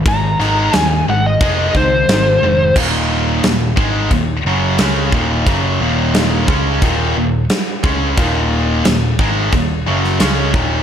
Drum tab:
CC |x---x---x---x---|x---x---x---x---|x---x---x---x---|x---x---x---x---|
SD |--o-o-------o---|----o-------o---|----o-------o---|----o------oo---|
BD |o-------o-o-----|o-----o-o-----o-|o-----o-o-----o-|o-----o-o-----o-|